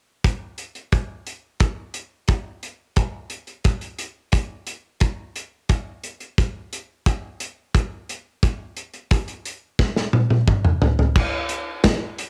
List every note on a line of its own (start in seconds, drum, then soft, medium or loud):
0.24 kick medium
0.24 closed hi-hat medium
0.58 closed hi-hat soft
0.75 closed hi-hat soft
0.92 kick medium
0.92 closed hi-hat medium
1.27 closed hi-hat medium
1.60 kick medium
1.60 closed hi-hat medium
1.94 closed hi-hat medium
2.28 kick medium
2.28 closed hi-hat medium
2.63 closed hi-hat soft
2.96 kick medium
2.96 closed hi-hat medium
3.30 closed hi-hat medium
3.47 closed hi-hat soft
3.64 kick medium
3.64 closed hi-hat medium
3.81 closed hi-hat soft
3.99 closed hi-hat medium
4.32 kick medium
4.32 closed hi-hat medium
4.67 closed hi-hat medium
5.00 kick medium
5.00 closed hi-hat medium
5.36 closed hi-hat medium
5.69 kick medium
5.69 closed hi-hat medium
6.04 closed hi-hat medium
6.20 closed hi-hat soft
6.38 kick medium
6.38 closed hi-hat medium
6.73 closed hi-hat medium
7.06 kick medium
7.06 closed hi-hat medium
7.40 closed hi-hat medium
7.74 kick medium
7.74 closed hi-hat medium
8.09 closed hi-hat medium
8.43 kick medium
8.43 closed hi-hat medium
8.76 closed hi-hat medium
8.93 closed hi-hat soft
9.11 kick medium
9.11 closed hi-hat medium
9.28 closed hi-hat soft
9.45 closed hi-hat medium
9.79 kick medium
9.79 snare soft
9.97 snare soft
10.13 high tom medium
10.30 high tom soft
10.48 kick medium
10.48 mid tom medium
10.65 mid tom medium
10.82 floor tom medium
10.99 floor tom medium
11.16 kick medium
11.16 crash medium
11.49 closed hi-hat medium
11.84 kick medium
11.84 snare medium
11.84 closed hi-hat medium
12.18 closed hi-hat medium